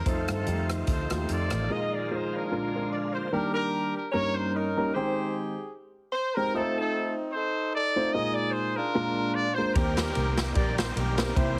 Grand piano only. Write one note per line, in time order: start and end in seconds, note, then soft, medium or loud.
0.06 0.36 A3 medium
0.06 0.36 D#4 medium
0.06 0.36 F4 medium
0.06 0.36 C5 medium
0.47 0.52 G3 soft
0.47 0.90 D#4 medium
0.47 0.90 F4 medium
0.47 0.90 G4 medium
0.52 0.92 A3 medium
1.10 1.53 A3 medium
1.10 1.53 D#4 medium
1.10 1.53 F4 medium
1.10 1.15 F#4 medium
1.15 1.55 G4 medium
1.70 2.29 A#2 medium
1.70 1.99 G#3 medium
1.70 1.99 D#4 medium
1.70 1.99 F4 medium
1.70 2.00 A#4 medium
2.11 2.50 G#3 medium
2.11 2.51 D#4 medium
2.11 2.50 F4 medium
2.11 2.16 A#4 medium
2.16 2.54 C5 medium
2.51 3.10 A#2 medium
2.51 2.69 G#3 medium
2.51 2.69 D4 medium
2.51 2.69 F4 medium
2.51 2.69 A#4 medium
2.75 3.17 G#3 medium
2.75 2.79 C4 soft
2.75 3.17 F4 medium
2.75 3.17 A#4 medium
2.80 3.19 D4 medium
3.32 3.91 D#3 medium
3.32 3.91 G3 medium
3.32 3.91 A#3 medium
3.32 3.91 D4 medium
3.32 3.90 G4 medium
3.32 3.91 A#4 medium
4.13 4.72 G2 medium
4.13 4.62 G3 medium
4.13 4.63 A#3 medium
4.13 4.63 C#4 medium
4.13 4.62 D#4 medium
4.13 4.63 A#4 loud
4.77 4.89 G3 medium
4.77 4.89 A#3 medium
4.77 4.89 C#4 medium
4.77 4.89 D#4 medium
4.77 4.89 A#4 medium
4.95 5.53 D#3 medium
4.95 5.53 G#3 medium
4.95 5.53 C4 medium
4.95 5.53 D#4 medium
4.95 5.53 C5 medium
4.95 5.53 G5 medium
6.37 6.49 G#3 medium
6.37 6.50 C4 medium
6.37 6.50 D#4 medium
6.37 6.50 G4 medium
6.37 6.50 C5 medium
6.54 7.12 A3 medium
6.54 7.12 C4 medium
6.54 7.13 D#4 medium
6.54 7.12 F4 medium
6.54 6.60 A#4 medium
6.60 7.15 C5 medium
7.96 8.09 A3 medium
7.96 8.10 C4 medium
7.96 8.09 D#4 medium
7.96 8.09 F4 medium
7.96 8.10 C5 medium
8.14 8.73 A#2 medium
8.14 8.72 G#3 medium
8.14 8.73 A#3 medium
8.14 8.73 D#4 medium
8.14 8.73 F4 medium
8.14 8.72 A#4 medium
8.95 9.54 A#2 medium
8.95 9.44 G#3 medium
8.95 9.44 A#3 medium
8.95 9.44 D4 medium
8.95 9.44 F4 medium
8.95 9.44 A#4 loud
9.58 9.70 G#3 medium
9.58 9.71 A#3 medium
9.58 9.71 D4 medium
9.58 9.71 F4 medium
9.58 9.71 A#4 medium
9.75 10.34 D#3 medium
9.75 10.33 A#3 medium
9.75 10.33 C4 medium
9.75 10.33 D#4 medium
9.75 10.33 G4 medium
9.75 10.33 C5 medium
11.18 11.31 A#3 medium
11.18 11.31 C4 medium
11.18 11.30 D#4 medium
11.18 11.31 G4 medium
11.18 11.31 A#4 medium
11.36 11.59 C3 medium
11.36 11.59 A#3 medium
11.36 11.59 C4 medium
11.36 11.59 E4 medium
11.36 11.59 G4 medium
11.36 11.59 C5 medium